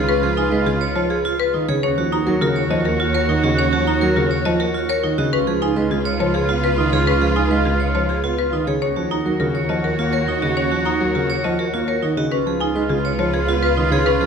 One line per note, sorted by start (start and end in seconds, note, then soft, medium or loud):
0.00 1.68 C#2 medium
0.00 0.13 C#3 medium
0.00 1.65 F4 medium
0.00 0.13 G#4 medium
0.00 1.65 B4 medium
0.00 0.13 C#5 medium
0.09 0.27 C#4 medium
0.09 0.27 B4 loud
0.23 0.42 F3 medium
0.23 0.42 G#4 medium
0.37 0.56 D#4 medium
0.37 0.57 G#5 medium
0.52 0.71 G#3 medium
0.52 0.71 B4 medium
0.66 0.86 C#3 medium
0.66 0.86 F4 medium
0.66 0.86 G#4 medium
0.81 1.00 C#5 medium
0.96 1.15 F3 medium
0.96 1.15 F4 medium
0.96 1.15 C#5 medium
1.10 1.29 G#4 medium
1.25 1.44 F4 loud
1.39 1.58 B4 medium
1.39 1.58 B4 loud
1.54 1.73 D#3 medium
1.54 1.73 D#4 medium
1.69 1.88 C#3 medium
1.69 1.88 G#4 medium
1.69 1.82 C#5 medium
1.83 5.17 D#2 medium
1.83 2.02 C#4 medium
1.83 5.14 F#4 medium
1.83 5.14 C#5 medium
1.83 2.02 C#5 loud
1.97 2.17 F3 medium
1.97 2.17 F#4 medium
2.12 2.31 D#4 medium
2.12 2.31 A#5 medium
2.27 2.46 F#3 loud
2.27 2.46 A#4 medium
2.41 2.60 C#3 medium
2.41 2.60 F4 medium
2.41 2.61 A#4 medium
2.56 2.75 C#5 loud
2.70 2.89 F3 loud
2.70 2.89 F4 medium
2.70 2.90 D#5 loud
2.85 3.04 F#4 medium
2.85 3.04 A#4 medium
3.00 3.19 F4 loud
3.14 3.33 A#4 medium
3.14 3.33 C#5 loud
3.29 3.48 D#3 medium
3.29 3.48 D#4 medium
3.43 3.62 C#3 medium
3.43 3.62 F#4 loud
3.43 3.63 D#5 medium
3.58 3.77 C#4 medium
3.58 3.77 C#5 loud
3.73 3.92 F3 medium
3.73 3.91 F#4 medium
3.87 4.06 D#4 loud
3.87 4.06 A#5 medium
4.01 4.21 F#3 loud
4.01 4.20 A#4 medium
4.16 4.35 C#3 medium
4.16 4.35 F4 medium
4.16 4.35 A#4 medium
4.31 4.50 C#5 medium
4.45 4.64 F3 loud
4.45 4.64 F4 medium
4.45 4.64 D#5 loud
4.60 4.79 F#4 medium
4.60 4.79 A#4 medium
4.75 4.93 F4 loud
4.89 5.08 A#4 medium
4.89 5.08 C#5 loud
5.04 5.23 D#3 medium
5.04 5.23 D#4 medium
5.18 5.37 C#3 loud
5.18 5.37 F#4 loud
5.18 5.37 D#5 medium
5.33 8.67 C#2 medium
5.33 5.52 C#4 medium
5.33 8.64 F4 medium
5.33 8.64 B4 medium
5.33 5.52 B4 loud
5.47 5.66 F3 medium
5.47 5.66 G#4 medium
5.62 5.81 D#4 loud
5.62 5.81 G#5 medium
5.76 5.95 G#3 loud
5.76 5.95 B4 medium
5.91 6.10 C#3 medium
5.91 6.10 F4 medium
5.91 6.10 G#4 medium
6.05 6.24 C#5 loud
6.20 6.39 F3 loud
6.20 6.39 F4 medium
6.20 6.39 C#5 loud
6.34 6.53 G#4 medium
6.34 6.54 G#4 medium
6.49 6.68 B3 medium
6.49 6.68 F4 medium
6.64 6.83 B4 medium
6.64 6.83 B4 loud
6.78 6.97 D#3 medium
6.78 6.97 D#4 medium
6.93 7.12 C#3 medium
6.93 7.12 G#4 medium
6.93 7.12 C#5 medium
7.07 7.26 C#4 medium
7.07 7.26 B4 medium
7.21 7.41 F3 medium
7.21 7.41 G#4 medium
7.36 7.55 D#4 loud
7.36 7.55 G#5 medium
7.51 7.70 G#3 loud
7.51 7.70 B4 medium
7.65 7.85 C#3 medium
7.65 7.85 F4 medium
7.65 7.85 G#4 medium
7.80 7.99 C#5 medium
7.95 8.14 F3 medium
7.95 8.14 F4 medium
7.95 8.14 C#5 medium
8.09 8.28 G#4 medium
8.24 8.43 B3 medium
8.24 8.43 F4 loud
8.38 8.57 B4 medium
8.53 8.72 D#3 medium
8.53 8.72 D#4 medium
8.67 8.86 C#3 medium
8.67 8.86 G#4 medium
8.67 8.81 C#5 medium
8.82 12.16 D#2 medium
8.82 9.01 C#4 medium
8.82 12.13 F#4 medium
8.82 12.13 C#5 medium
8.82 9.01 C#5 medium
8.96 9.16 F3 medium
8.96 9.16 F#4 medium
9.11 9.30 D#4 medium
9.11 9.30 A#5 medium
9.26 9.45 F#3 medium
9.26 9.45 A#4 medium
9.40 9.59 C#3 medium
9.40 9.59 F4 medium
9.40 9.59 A#4 medium
9.55 9.74 C#5 medium
9.69 9.89 F3 medium
9.69 9.89 F4 medium
9.69 9.88 D#5 medium
9.84 10.03 F#4 medium
9.84 10.03 A#4 medium
9.99 10.18 A#3 medium
9.99 10.18 F4 medium
10.13 10.32 A#4 medium
10.13 10.32 C#5 loud
10.28 10.47 D#3 medium
10.28 10.47 D#4 medium
10.42 10.61 C#3 medium
10.42 10.61 F#4 medium
10.42 10.61 D#5 medium
10.57 10.76 C#4 medium
10.57 10.76 C#5 loud
10.71 10.90 F3 medium
10.71 10.90 F#4 medium
10.85 11.05 D#4 medium
10.85 11.05 A#5 medium
11.01 11.20 F#3 loud
11.01 11.20 A#4 medium
11.15 11.34 C#3 medium
11.15 11.34 F4 medium
11.15 11.34 A#4 medium
11.30 11.49 C#5 medium
11.44 11.63 F3 loud
11.44 11.63 F4 medium
11.44 11.63 D#5 medium
11.59 11.78 F#4 medium
11.59 11.78 A#4 medium
11.74 11.92 A#3 medium
11.74 11.92 F4 medium
11.88 12.07 A#4 medium
11.88 12.07 C#5 loud
12.03 12.22 D#3 medium
12.03 12.22 D#4 medium
12.17 12.36 C#3 medium
12.17 12.36 F#4 medium
12.17 12.36 D#5 medium
12.31 14.26 C#2 medium
12.31 12.51 C#4 medium
12.31 14.26 F4 medium
12.31 14.26 B4 medium
12.31 12.51 B4 medium
12.46 12.65 F3 medium
12.46 12.65 G#4 medium
12.60 12.80 D#4 medium
12.60 12.80 G#5 medium
12.75 12.94 G#3 medium
12.75 12.94 B4 medium
12.89 13.09 C#3 medium
12.89 13.09 F4 medium
12.89 13.09 G#4 medium
13.05 13.24 C#5 loud
13.19 13.38 F3 loud
13.19 13.38 F4 medium
13.19 13.38 C#5 medium
13.34 13.53 G#4 medium
13.48 13.67 B3 medium
13.48 13.67 F4 loud
13.63 13.82 B4 loud
13.63 13.82 B4 medium
13.77 13.96 D#3 medium
13.77 13.96 D#4 medium
13.91 14.11 C#3 medium
13.91 14.11 G#4 loud
13.91 14.11 C#5 medium
14.06 14.25 C#4 medium
14.06 14.25 B4 loud
14.21 14.26 F3 medium
14.21 14.26 G#4 medium